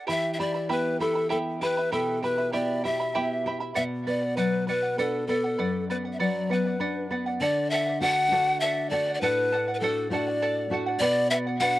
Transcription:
0.07 nylon-string guitar E3, charango E4 G4 E5 G5 B5, pan flute E5
0.34 pan flute E5
0.39 charango E4 E5 G5 B5, nylon-string guitar G4, pan flute D5
0.54 charango E4 E5 B5
0.69 nylon-string guitar B3, charango E4 G4 E5 G5 B5, pan flute B4
1.00 charango E4 E5 G5 B5, nylon-string guitar G4, pan flute A4
1.15 charango E4 E5 B5
1.29 nylon-string guitar B3, charango E4 G4 E5 G5 B5, pan flute A4
1.61 charango E4 E5 G5 B5, nylon-string guitar G4, pan flute B4
1.77 charango E4 E5 B5
1.92 nylon-string guitar B2, charango E4 G4 E5 G5 B5, pan flute A4
2.23 charango E4 E5 G5 B5, nylon-string guitar G4, pan flute B4
2.38 charango E4 E5 B5
2.53 nylon-string guitar B3, charango E4 G4 E5 G5 B5, pan flute D5
2.84 charango E4 E5 G5 B5, nylon-string guitar G4, pan flute E5
3.00 charango E4 E5 B5
3.15 nylon-string guitar B3, charango E4 G4 E5 G5 B5
3.46 charango E4 E5 G5 B5, nylon-string guitar G4
3.60 charango E4 E5 B5
3.74 nylon-string guitar B2, charango B4 D5 F#5, pan flute E5
4.07 nylon-string guitar B3, charango B4 D5 F#5, pan flute D5
4.22 charango D5 F#5
4.37 nylon-string guitar F#3, charango B4 D5 F#5, pan flute B4
4.67 nylon-string guitar B3, charango B4 D5 F#5, pan flute B4
4.83 charango D5 F#5
4.98 nylon-string guitar D4, pan flute A4, charango B4 D5 F#5
5.27 nylon-string guitar B3, pan flute A4, charango B4 D5 F#5
5.44 charango D5 F#5
5.59 nylon-string guitar F#2, charango B4 D5 F#5
5.90 nylon-string guitar B3, charango B4 D5 F#5, pan flute B4
6.05 charango D5 F#5
6.13 pan flute E5
6.19 nylon-string guitar F#3, charango B4 D5 F#5, pan flute D5
6.49 nylon-string guitar B3, charango B4 D5 F#5, pan flute B4
6.65 charango D5 F#5
6.80 nylon-string guitar D4, charango B4 D5 F#5
7.10 nylon-string guitar B3, charango B4 D5 F#5
7.26 charango D5 F#5
7.40 nylon-string guitar D3, charango A4 D5 F#5, pan flute D5
7.70 charango A4 D5 F#5, pan flute E5
7.87 charango D5 F#5
8.00 nylon-string guitar A3 D4 F#4, charango A4 D5 F#5, pan flute F#5
8.31 nylon-string guitar A3 D4 F#4, charango A4 D5 F#5
8.48 charango D5 F#5
8.60 charango A4 D5 F#5, pan flute E5
8.90 nylon-string guitar A3 D4 F#4, charango A4 D5 F#5, pan flute D5
9.07 charango D5 F#5
9.14 pan flute D5
9.21 nylon-string guitar A2, charango A4 D5 F#5, pan flute B4
9.52 charango A4 D5 F#5
9.68 charango D5 F#5
9.74 pan flute B4
9.80 nylon-string guitar A3 D4 F#4, pan flute A4, charango A4 D5 F#5
10.10 nylon-string guitar A3 D4 F#4, charango A4 D5 F#5, pan flute D5
10.28 charango D5 F#5
10.42 charango A4 D5 F#5
10.70 nylon-string guitar A3 D4 F#4, charango A4 D5 F#5
10.86 charango D5 F#5
11.00 nylon-string guitar B2, charango B4 D5 F#5, pan flute D5
11.30 charango B4 D5 F#5, pan flute E5
11.47 charango D5 F#5
11.60 nylon-string guitar B3 D4 F#4, charango B4 D5 F#5, pan flute F#5

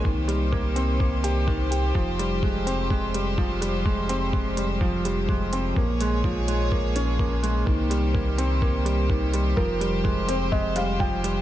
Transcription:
Already playing: string section A#3
0.04 analog synth bass C2, grand piano D#3, string section D#3 G4 C5, kick
0.28 grand piano G3, closed hi-hat
0.52 grand piano A#3, kick
0.76 grand piano C4, closed hi-hat
1.00 grand piano A#3, kick
1.24 grand piano G4, closed hi-hat
1.47 grand piano D#3, kick
1.71 grand piano G4, closed hi-hat
1.95 analog synth bass F1, grand piano F3, string section F3, kick
2.19 grand piano G3, closed hi-hat
2.43 grand piano G#3, kick
2.67 grand piano C4, closed hi-hat
2.90 grand piano G#3, kick
3.14 grand piano G3, closed hi-hat
3.38 grand piano F3, kick
3.62 grand piano G3, closed hi-hat
3.85 grand piano G#3, kick
4.09 grand piano C4, closed hi-hat
4.33 grand piano G#3, kick
4.57 grand piano G3, closed hi-hat
4.81 grand piano F3, kick
5.05 grand piano G3, closed hi-hat
5.29 grand piano G#3, kick
5.53 grand piano C4, closed hi-hat
5.75 analog synth bass A#1, string section A#3 G#4 C#5, grand piano A#3, kick
6.01 grand piano G#3, closed hi-hat
6.24 grand piano F3, kick
6.48 grand piano G#3, closed hi-hat
6.72 grand piano A#3, kick
6.96 grand piano C#4, closed hi-hat
7.19 grand piano A#3, kick
7.43 grand piano G#3, closed hi-hat
7.66 analog synth bass C2, string section D#3 G4 C5, grand piano D#3, kick
7.90 grand piano G3, closed hi-hat
8.14 grand piano A#3, kick
8.38 grand piano C4, closed hi-hat
8.62 grand piano A#3, kick
8.85 grand piano G3, closed hi-hat
9.10 grand piano D#3, kick
9.34 grand piano G3, closed hi-hat
9.57 analog synth bass F1, grand piano F3, string section F3, felt piano A#4, kick
9.81 grand piano G3, closed hi-hat
10.04 grand piano G#3, kick
10.28 grand piano C4, felt piano C5, closed hi-hat
10.52 grand piano G#3, felt piano D#5, kick
10.76 grand piano G3, felt piano F5, closed hi-hat
11.00 grand piano F3, felt piano G5, kick
11.24 grand piano G3, closed hi-hat

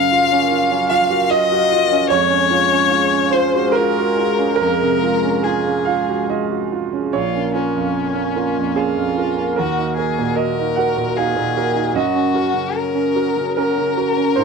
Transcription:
Already playing: grand piano F#2 C#3 F5, analog synth pad F#3 A#4 F5, violin F5
0.12 grand piano F4
0.32 grand piano C#4
0.52 grand piano F4
0.71 grand piano C#4
0.89 grand piano F4 F5, violin F5
1.10 grand piano F#4
1.30 grand piano F4 D#5, violin D#5
1.52 grand piano F#4
1.72 grand piano F4
1.91 grand piano C#4
2.09 grand piano F2 C#5, analog synth pad G#3 G#4 F5, violin C#5
2.30 grand piano C#4
2.51 grand piano F4
2.72 grand piano C#4
2.91 grand piano F4
3.13 grand piano C#4
3.31 grand piano F4 C5, violin C5
3.56 grand piano F#4
3.72 grand piano A#4, violin A#4
3.77 grand piano F4
3.98 grand piano F#4
4.19 grand piano F4
4.39 grand piano C#4
4.56 grand piano A#4
4.60 grand piano F2, violin A#4
4.82 grand piano C3
5.03 grand piano F4
5.24 grand piano C#4
5.42 grand piano F4 G#4, violin G#4
5.66 grand piano C#4
5.85 grand piano F4 F5
6.09 grand piano F#4
6.30 grand piano F4 D#5
6.51 grand piano F#4
6.72 grand piano F4
6.93 grand piano C#4
7.13 grand piano A#1 C#5, analog synth pad A#3 A#4 F5, violin F4
7.35 grand piano C#4
7.55 violin C#4, grand piano F4 A#4
7.75 grand piano F2
8.15 grand piano C#4
8.36 grand piano F4 A#4
8.56 grand piano F2
8.76 grand piano C#4 G#4, violin F4
8.96 grand piano F2
9.17 grand piano F4 A#4
9.37 grand piano C#4
9.56 grand piano D#2 A#4, analog synth pad F#4, violin F#4
9.79 grand piano D#4
9.97 grand piano F#4 A#4, violin G#4
10.19 grand piano A#2
10.36 violin A#4, grand piano D#5
10.60 grand piano D#4
10.76 grand piano F#4 A#4 F#5
10.97 grand piano A#2
11.16 grand piano D#4 F5, violin G#4
11.36 grand piano A#2
11.57 grand piano F#4 A#4
11.75 grand piano D#4
11.94 grand piano F#2 D#5, analog synth pad C#4 A#4, violin F#4
12.15 grand piano C#4
12.34 grand piano F#4 A#4
12.54 grand piano C#3
12.77 violin A#4
12.95 grand piano C#4
13.16 grand piano F#4 A#4
13.37 grand piano C#3
13.56 grand piano C#4 A#4, violin A#4
13.78 grand piano C#3
13.97 grand piano F#4 A#4
14.17 grand piano C#4
14.36 grand piano G#2 C5, analog synth pad C4 F4 F5

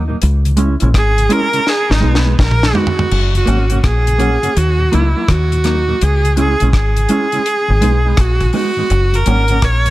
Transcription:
Already playing: fingered electric bass D#2
0.08 tonewheel organ D#2 A#2, clean electric guitar F#3 A#3 D#4
0.22 fingered electric bass C#2, closed hi-hat
0.45 tonewheel organ C#3, closed hi-hat
0.57 clean electric guitar G#3 C#4 E4, tonewheel organ G#3 C#4 E4, closed hi-hat
0.80 fingered electric bass A#1, tonewheel organ C#3, clean electric guitar G#3 C#4 E4, closed hi-hat
0.94 fingered electric bass G#1, viola G#4, kick, cross-stick, closed hi-hat
1.18 tonewheel organ C#3, closed hi-hat
1.29 clean electric guitar G#3 C#4 E4, tonewheel organ G#3 C#4 E4, viola A#4, closed hi-hat
1.52 tonewheel organ C#3, clean electric guitar G#3 C#4 E4, closed hi-hat
1.67 viola G#4, snare
1.90 fingered electric bass G#1, tonewheel organ G#2 D#3, viola D#4, snare
2.00 fingered electric bass B1, clean electric guitar G#3 B3 D#4, tonewheel organ G#3 B3 D#4
2.15 viola B3, snare
2.25 clean electric guitar G#3 B3 D#4
2.39 fingered electric bass A#1, viola A#4, kick, snare
2.51 mid tom
2.63 tonewheel organ G#2 D#3, snare
2.74 clean electric guitar G#3 B3 D#4, tonewheel organ G#3 B3 D#4, viola F#4, floor tom
2.87 floor tom
2.97 tonewheel organ G#2 D#3, clean electric guitar G#3 B3 D#4, floor tom
3.11 fingered electric bass F#1, crash
3.35 tonewheel organ F#2 C#3, viola F#4, closed hi-hat
3.46 fingered electric bass G#1, tonewheel organ F#3 A#3 C#4, clean electric guitar A#3 C#4 F#4, closed hi-hat
3.70 tonewheel organ F#2 C#3, clean electric guitar A#3 C#4 F#4, closed hi-hat
3.84 fingered electric bass A#1, viola G#4, kick, cross-stick, closed hi-hat
4.07 tonewheel organ F#2 C#3, closed hi-hat
4.19 tonewheel organ F#3 A#3 C#4, clean electric guitar A#3 C#4 F#4, closed hi-hat
4.43 tonewheel organ F#2 C#3, clean electric guitar A#3 C#4 F#4, closed hi-hat
4.57 fingered electric bass D#2, viola F#4, closed hi-hat
4.79 tonewheel organ D#2 A#2
4.92 fingered electric bass C#2, tonewheel organ F#3 A#3 D#4, clean electric guitar F#3 A#3 D#4, viola E4, closed hi-hat
5.16 clean electric guitar F#3 A#3 D#4
5.28 fingered electric bass D#2, viola F#4, kick, cross-stick, closed hi-hat
5.52 tonewheel organ D#2 A#2, closed hi-hat
5.64 clean electric guitar F#3 A#3 D#4, tonewheel organ F#3 A#3 D#4, cross-stick, closed hi-hat
5.87 tonewheel organ D#2 A#2, clean electric guitar F#3 A#3 D#4
6.01 fingered electric bass C#2, viola G#4, closed hi-hat
6.24 tonewheel organ C#3, closed hi-hat
6.36 tonewheel organ G#3 C#4 E4, clean electric guitar G#3 C#4 E4, viola G#4, closed hi-hat
6.60 fingered electric bass A#1, tonewheel organ C#3, clean electric guitar G#3 C#4 E4, closed hi-hat
6.73 fingered electric bass G#1, viola G#4, kick, cross-stick, closed hi-hat
6.96 tonewheel organ C#3, closed hi-hat
7.09 tonewheel organ G#3 C#4 E4, clean electric guitar G#3 C#4 E4, closed hi-hat
7.32 tonewheel organ C#3, clean electric guitar G#3 C#4 E4, closed hi-hat
7.46 closed hi-hat
7.68 fingered electric bass G#1, tonewheel organ G#2 D#3
7.81 fingered electric bass B1, tonewheel organ G#3 B3 D#4, clean electric guitar G#3 B3 D#4, closed hi-hat
8.05 clean electric guitar G#3 B3 D#4
8.17 fingered electric bass A#1, viola F#4, kick, cross-stick, closed hi-hat
8.40 tonewheel organ G#2 D#3, kick, closed hi-hat
8.53 tonewheel organ G#3 B3 D#4, clean electric guitar G#3 B3 D#4, viola F#4, open hi-hat
8.77 tonewheel organ G#2 D#3, clean electric guitar G#3 B3 D#4
8.90 fingered electric bass F#1, closed hi-hat
9.13 tonewheel organ F#2 C#3, viola A#4, closed hi-hat
9.26 fingered electric bass G#1, tonewheel organ F#3 A#3 C#4, clean electric guitar A#3 C#4 F#4, closed hi-hat
9.48 tonewheel organ F#2 C#3, clean electric guitar A#3 C#4 F#4, closed hi-hat
9.62 fingered electric bass A#1, viola C#5, kick, cross-stick, closed hi-hat
9.86 tonewheel organ F#2 C#3, closed hi-hat

